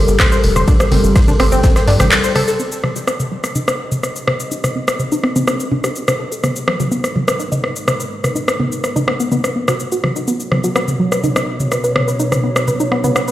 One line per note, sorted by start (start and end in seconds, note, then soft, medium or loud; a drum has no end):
0.00 2.56 G3 medium
0.00 2.56 G4 medium
0.00 2.56 A4 medium
0.00 2.56 A#4 medium
0.08 0.18 G1 medium
0.08 shaker medium
0.20 0.25 C5 medium
0.20 0.25 C6 medium
0.20 kick loud
0.20 cross-stick medium
0.20 snare loud
0.20 clap loud
0.20 closed hi-hat medium
0.20 mid tom loud
0.20 ride medium
0.20 shaker medium
0.32 0.40 C5 medium
0.32 0.40 C6 medium
0.32 shaker medium
0.44 0.54 F1 loud
0.44 closed hi-hat medium
0.44 open hi-hat loud
0.56 0.66 F1 medium
0.56 0.61 C5 medium
0.56 0.61 C6 medium
0.56 cross-stick medium
0.56 mid tom medium
0.56 shaker medium
0.68 0.73 D4 medium
0.68 0.73 D5 medium
0.68 kick loud
0.68 closed hi-hat medium
0.68 ride medium
0.68 shaker medium
0.80 0.88 C5 medium
0.80 0.88 C6 medium
0.80 cross-stick medium
0.80 shaker medium
0.92 1.02 G1 medium
0.92 0.97 C4 medium
0.92 0.97 C5 medium
0.92 snare loud
0.92 closed hi-hat medium
0.92 open hi-hat loud
0.92 mid tom loud
1.04 1.14 G1 medium
1.04 shaker medium
1.16 1.21 C5 medium
1.16 1.21 C6 medium
1.16 kick loud
1.16 cross-stick soft
1.16 snare loud
1.16 closed hi-hat medium
1.16 ride medium
1.16 shaker medium
1.28 1.31 D4 loud
1.28 1.31 D5 medium
1.28 closed hi-hat soft
1.28 mid tom loud
1.28 shaker medium
1.39 1.50 G1 medium
1.39 1.45 C4 loud
1.39 1.45 C5 medium
1.39 cross-stick medium
1.39 closed hi-hat medium
1.39 open hi-hat loud
1.52 1.62 G1 medium
1.52 1.60 C4 loud
1.52 1.60 C5 medium
1.52 shaker medium
1.63 1.69 C4 loud
1.63 1.69 C5 medium
1.63 kick loud
1.63 snare loud
1.63 closed hi-hat medium
1.63 mid tom medium
1.63 ride medium
1.63 shaker medium
1.76 1.84 C5 medium
1.76 1.84 C6 medium
1.76 cross-stick medium
1.76 snare loud
1.76 closed hi-hat medium
1.76 shaker medium
1.88 1.98 G2 loud
1.88 1.93 D4 loud
1.88 1.93 D5 medium
1.88 snare loud
1.88 closed hi-hat medium
1.88 open hi-hat loud
1.99 2.10 A1 medium
1.99 2.03 G4 medium
1.99 2.03 G5 medium
1.99 cross-stick medium
1.99 snare loud
1.99 closed hi-hat medium
1.99 mid tom loud
1.99 shaker medium
2.11 snare loud
2.11 clap loud
2.11 closed hi-hat medium
2.11 ride medium
2.11 shaker medium
2.24 2.32 C5 medium
2.24 2.32 C6 medium
2.24 shaker medium
2.35 2.41 A4 medium
2.35 2.41 A5 medium
2.35 cross-stick medium
2.35 closed hi-hat medium
2.35 open hi-hat loud
2.35 mid tom medium
2.48 2.51 A4 medium
2.48 2.51 A5 medium
2.48 snare medium
2.48 shaker medium
2.59 6.40 C3 medium
2.59 2.65 C4 medium
2.59 6.40 C4 medium
2.59 6.40 G4 medium
2.59 6.40 D#5 medium
2.59 shaker medium
2.72 shaker medium
2.83 2.92 G3 medium
2.83 cross-stick soft
2.83 mid tom medium
2.96 3.01 G3 loud
2.96 shaker medium
3.08 3.13 C4 loud
3.08 cross-stick medium
3.08 shaker medium
3.20 mid tom medium
3.20 shaker medium
3.32 3.37 G3 medium
3.44 3.49 C5 medium
3.44 cross-stick soft
3.44 shaker medium
3.55 3.61 D#4 medium
3.55 mid tom medium
3.55 shaker medium
3.68 3.73 D#5 medium
3.68 cross-stick medium
3.68 shaker medium
3.92 mid tom medium
3.92 shaker medium
4.03 4.09 C5 medium
4.03 cross-stick soft
4.03 shaker medium
4.16 4.24 C5 medium
4.16 shaker medium
4.28 cross-stick medium
4.28 mid tom medium
4.40 4.45 C5 medium
4.40 shaker medium
4.51 4.57 D#4 medium
4.51 shaker medium
4.64 4.72 C5 medium
4.64 cross-stick soft
4.64 mid tom medium
4.64 shaker medium
4.76 4.81 C4 medium
4.88 cross-stick medium
4.88 shaker medium
5.00 5.05 C5 medium
5.00 mid tom medium
5.00 shaker soft
5.12 5.15 D#4 loud
5.12 shaker medium
5.24 5.29 C4 loud
5.24 cross-stick soft
5.36 5.44 C4 loud
5.36 mid tom medium
5.36 shaker medium
5.48 5.53 C4 loud
5.48 cross-stick medium
5.48 shaker medium
5.60 5.68 C5 medium
5.60 shaker medium
5.72 5.77 D4 loud
5.72 mid tom medium
5.84 5.87 G4 medium
5.84 cross-stick soft
5.84 shaker medium
5.96 shaker medium
6.08 6.16 C5 medium
6.08 cross-stick medium
6.08 mid tom medium
6.08 shaker medium
6.20 6.25 A4 medium
6.32 6.35 A4 medium
6.32 shaker medium
6.43 10.24 G#3 medium
6.43 6.49 B3 medium
6.43 10.24 D#4 medium
6.43 10.24 A#4 medium
6.43 10.24 B4 medium
6.43 cross-stick medium
6.43 mid tom medium
6.43 shaker medium
6.56 shaker soft
6.67 6.76 F#3 medium
6.67 cross-stick medium
6.80 6.85 F#3 loud
6.80 mid tom medium
6.80 shaker medium
6.91 6.97 B3 loud
6.91 shaker medium
7.04 cross-stick medium
7.04 shaker medium
7.15 7.21 F#3 medium
7.15 mid tom medium
7.28 7.33 B4 medium
7.28 cross-stick medium
7.28 shaker medium
7.39 7.45 D#4 medium
7.39 shaker soft
7.52 7.57 D#5 medium
7.52 mid tom medium
7.52 shaker medium
7.64 cross-stick soft
7.76 shaker medium
7.88 7.93 B4 medium
7.88 cross-stick medium
7.88 mid tom medium
7.88 shaker medium
8.00 8.08 B4 medium
8.00 shaker medium
8.24 8.29 B4 medium
8.24 cross-stick soft
8.24 mid tom medium
8.24 shaker soft
8.35 8.41 D#4 medium
8.35 shaker medium
8.48 8.56 B4 medium
8.48 cross-stick medium
8.48 shaker soft
8.60 8.65 B3 medium
8.60 mid tom medium
8.72 shaker medium
8.84 8.89 B4 medium
8.84 cross-stick soft
8.84 shaker soft
8.96 8.99 D#4 loud
8.96 mid tom medium
8.96 shaker soft
9.08 9.13 B3 loud
9.08 cross-stick medium
9.20 9.28 B3 medium
9.20 shaker medium
9.32 9.37 B3 loud
9.32 mid tom medium
9.32 shaker soft
9.44 9.52 B4 medium
9.44 cross-stick medium
9.44 shaker medium
9.56 9.59 B3 medium
9.68 9.73 F#4 medium
9.68 cross-stick medium
9.68 mid tom medium
9.68 shaker medium
9.80 shaker soft
9.92 9.97 F#4 medium
9.92 shaker medium
10.04 10.07 F#3 medium
10.04 cross-stick medium
10.04 mid tom medium
10.16 10.21 D#4 medium
10.16 shaker soft
10.27 13.31 B2 medium
10.27 13.31 B3 medium
10.27 10.33 B3 medium
10.27 13.31 F#4 medium
10.27 13.31 C#5 medium
10.27 shaker medium
10.40 shaker medium
10.52 10.60 F#3 medium
10.52 cross-stick medium
10.52 mid tom medium
10.64 10.69 F#3 loud
10.64 shaker medium
10.76 10.81 B3 loud
10.76 cross-stick medium
10.76 shaker soft
10.88 mid tom medium
10.88 shaker medium
10.99 11.05 F#3 medium
11.12 11.17 B4 medium
11.12 cross-stick medium
11.12 shaker medium
11.24 11.29 D#4 medium
11.24 mid tom medium
11.24 shaker soft
11.36 11.41 D#5 medium
11.36 cross-stick medium
11.36 shaker medium
11.60 mid tom medium
11.60 shaker soft
11.72 11.77 B4 medium
11.72 cross-stick medium
11.72 shaker soft
11.84 11.92 B4 medium
11.84 shaker medium
11.96 cross-stick medium
11.96 mid tom medium
12.08 12.13 B4 medium
12.08 shaker medium
12.20 12.25 D#4 medium
12.20 shaker medium
12.32 12.40 B4 medium
12.32 cross-stick soft
12.32 mid tom medium
12.32 shaker medium
12.44 12.49 B3 medium
12.56 cross-stick medium
12.56 shaker medium
12.68 12.73 B4 medium
12.68 mid tom medium
12.68 shaker soft
12.80 12.83 D#4 loud
12.80 shaker medium
12.92 12.97 B3 loud
12.92 cross-stick medium
13.04 13.12 B3 loud
13.04 mid tom loud
13.04 shaker medium
13.16 13.21 B3 loud
13.16 cross-stick medium
13.16 shaker soft
13.28 13.31 B4 medium
13.28 shaker medium